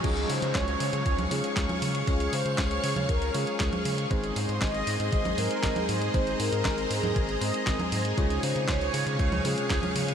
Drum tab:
CC |x---------------|----------------|----------------|----------------|
HH |xxoxxxoxxxoxxxox|xxoxxxoxxxoxxxox|xxoxxxoxxxoxxxox|xxoxxxoxxxoxxxox|
CP |----x-------x---|----x-------x---|----x-------x---|----x-------x---|
SD |----o-------o---|----o-------o---|----o-------o---|----o-------o---|
CG |---------o---o--|-------o-----o--|---------o---o--|-------o-----o--|
BD |o---o---o---o---|o---o---o---o---|o---o---o---o---|o---o---o---o---|

CC |----------------|
HH |xxoxxxoxxxoxxxox|
CP |----x-------x---|
SD |----o-------o---|
CG |---------o---o--|
BD |o---o---o---o---|